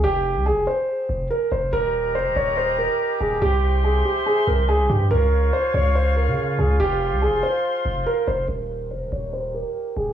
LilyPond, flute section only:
\new Staff \with { instrumentName = "Flute section" } { \time 4/4 \key f \minor \tempo 4 = 142 << { r1 | <bes' ees'' bes''>1 | <c'' e'' c'''>1 | <des'' f'' des'''>1 |
<c'' f'' c'''>1 | <bes' ees'' bes''>1 | } \\ { r1 | g'1~ | g'1 | f'1~ |
f'1 | g'1 | } >> }